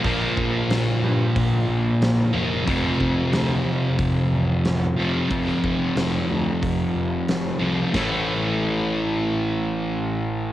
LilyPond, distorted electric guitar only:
\new Staff \with { instrumentName = "Distorted electric guitar" } { \clef bass \time 4/4 \key a \phrygian \tempo 4 = 91 <bes, f bes>2.~ <bes, f bes>8 <bes, f bes>8 | <f, c f>2.~ <f, c f>8 <f, c f>8 | <f, c f>2.~ <f, c f>8 <f, c f>8 | <a, e a>1 | }